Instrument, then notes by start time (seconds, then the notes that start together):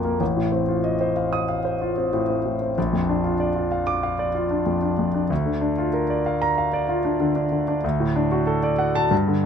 grand piano
Already playing: A#1 F2 A#3 F4 A#4 D5 F5 D6
0.04 A#3
0.20 A1
0.37 A2
0.52 C4
0.69 F4
0.84 D#5
1.01 C5
1.17 F5
1.33 D#6
1.49 F5
1.65 C5
1.81 F4
1.97 C4
2.13 A2
2.30 C4
2.45 A2
2.62 C4
2.78 A#1
2.93 F2
3.09 D4
3.24 F4
3.40 D5
3.55 F4
3.72 F5
3.87 D6
4.03 F5
4.19 D5
4.35 F4
4.51 D4
4.66 F2
4.82 D4
4.99 F2
5.14 D4
5.30 D2
5.46 D3
5.61 D4
5.78 F4
5.94 A#4
6.10 D5
6.26 F5
6.42 A#5
6.58 F5
6.73 D5
6.89 F4
7.05 D4
7.20 D3
7.36 D4
7.52 D3
7.68 D4
7.84 D2
8.00 A2
8.16 D4
8.32 F#4
8.47 A4
8.63 D5
8.79 F#5
8.95 A5
9.11 G2
9.28 D3